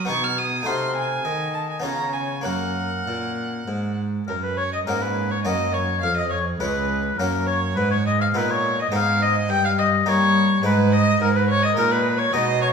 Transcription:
Already playing: F#3 A#4
0.05 B3 D#4 G#4 C#6
0.10 B2
0.24 F6
0.38 D#6
0.63 A3 D#4 F#4 C6
0.67 C3 F5
0.96 G#5
1.24 D#3 D#5
1.54 A5
1.70 G#5
1.80 B3 C#4 F4 C#5 A#5
1.84 C#3
2.13 G#5
2.41 F#2 A#3 C#4 F#4 A#4 F#5
2.46 F#2
3.07 A#2
3.68 G#2
4.27 F#2 A#4
4.43 B4
4.57 C#5
4.73 D#5
4.86 G#2 A#3 C#4 F#4 A#4
5.02 B4
5.30 C#5
5.44 F#2 A#3 C#4 F#4 D#5
5.73 C#5
6.01 F2 F5
6.17 D#5
6.30 C#5
6.59 C#2 G#3 C#4 G#4 B4
7.18 F#2 A#3 C#4 F#4 A#4
7.47 C#5
7.76 G#2 B4
7.91 C#5
8.06 D#5
8.20 F5
8.34 A#2 G#3 B3 D#4 B4
8.51 C#5
8.79 D#5
8.92 G#2 G#3 B3 D#4 F5
9.22 D#5
9.49 G2 G5
9.65 F5
9.78 D#5
10.06 G3 A#3 D#4 C#5
10.63 G#2 G#3 D#4 B4
10.92 D#5
11.20 G#2 A#4
11.35 B4
11.49 C#5
11.62 D#5
11.76 A#2 G#3 D#4 A#4
11.91 B4
12.18 C#5
12.33 B2 G#3 D#4 D#5
12.62 C#5

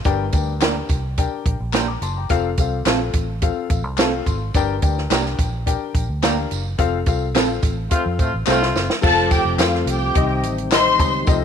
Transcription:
0.04 G1 G2 D4 G4 A#4 G5, kick, closed hi-hat, tambourine
0.32 D2 D4 G4 A#4 G5, kick, closed hi-hat, tambourine
0.61 A#3 D4 G4 A#4 G5, snare, clap, closed hi-hat, tambourine
0.89 C2, kick, closed hi-hat, tambourine
1.18 D4 G4 A#4 G5, kick, closed hi-hat, tambourine
1.46 A#1, kick, closed hi-hat
1.60 A#1
1.73 A#3 D4 G4 A#4 A5 C6, snare, clap, closed hi-hat, tambourine
1.88 A#5 D6
2.02 F#1 A5 C6, closed hi-hat, tambourine
2.17 G5 A#5
2.29 F1 C4 F4 A4 F5, kick, closed hi-hat, tambourine
2.57 C2 C4 F4 A4 F5, kick, closed hi-hat, tambourine
2.85 A#1 A3 C4 F4 A4 F5, snare, clap, closed hi-hat, tambourine
3.13 A1, kick, closed hi-hat, tambourine
3.42 C4 F4 A4 F5, kick, closed hi-hat, tambourine
3.70 A1 F5, kick, closed hi-hat, tambourine
3.84 C2
3.98 A3 C4 F4 A4 F5 A5, snare, clap, closed hi-hat, tambourine
4.26 G#1 C6, kick, closed hi-hat, tambourine
4.54 G1 G2 D4 G4 A#4 G5, kick, closed hi-hat, tambourine
4.82 D2 D4 G4 A#4 G5, kick, closed hi-hat, tambourine
4.98 snare
5.10 C2 A#3 D4 G4 A#4 G5, snare, clap, closed hi-hat, tambourine
5.26 snare
5.39 A#1, kick, closed hi-hat, tambourine
5.66 D4 G4 A#4 G5, kick, closed hi-hat, tambourine
5.95 A#1, kick, closed hi-hat, tambourine
6.09 D2
6.23 A#3 D4 G4 A#4 F5, snare, clap, closed hi-hat, tambourine
6.51 F#1, closed hi-hat, tambourine
6.78 F1 C4 F4 A4 F5, kick, closed hi-hat, tambourine
7.06 C2 C4 F4 A4 F5, kick, closed hi-hat, tambourine
7.35 A#1 A3 C4 F4 A4 F5, snare, clap, closed hi-hat, tambourine
7.63 A1, kick, closed hi-hat, tambourine
7.90 A3 C4 F4 A4 F5, kick, closed hi-hat, tambourine
8.06 F2
8.19 A2 A3 C4 F4, kick, closed hi-hat, tambourine
8.34 A1
8.46 C2 A3 C4 F4 A4 F5, snare, clap, tambourine
8.63 snare
8.75 F#1, snare, tambourine
8.90 snare
9.01 F1 F3 A3 C4 F4 A4 F5 A5, kick, crash, tambourine
9.31 G4 G5, kick, closed hi-hat, tambourine
9.45 F1
9.58 F2 C4 F4 A4 F5, snare, clap, closed hi-hat, tambourine
9.75 snare
9.86 C2 G4 G5, closed hi-hat, tambourine
10.14 C2 C3 D#3 G3 C4 D#4 G4 D#5, kick, closed hi-hat
10.43 A1, closed hi-hat, tambourine
10.58 closed hi-hat
10.71 C4 D#4 G4 C5 D#5 C6, snare, clap, closed hi-hat, tambourine
10.99 C#2, kick, closed hi-hat, tambourine
11.25 C2 C3 F3 A3 C4 D#4 F4 A4 D#5, kick, closed hi-hat, tambourine

